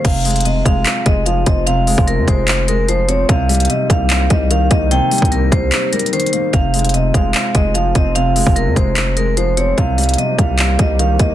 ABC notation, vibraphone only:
X:1
M:4/4
L:1/8
Q:1/4=148
K:Fm
V:1 name="Vibraphone"
f2 e f2 e f e | f2 B c2 B c d | f2 e f2 e f e | g2 B c2 B c2 |
f2 e f2 e f e | f2 B c2 B c d | f2 e f2 e f e |]